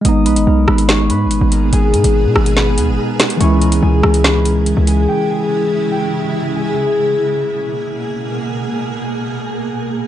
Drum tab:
HH |x-xx---x--x-x-x-|x-xx---x--x---xx|x-xx---x--x-x-x-|----------------|
SD |------r-o-------|------r-o-----o-|------r-o-------|----------------|

HH |----------------|----------------|
SD |----------------|----------------|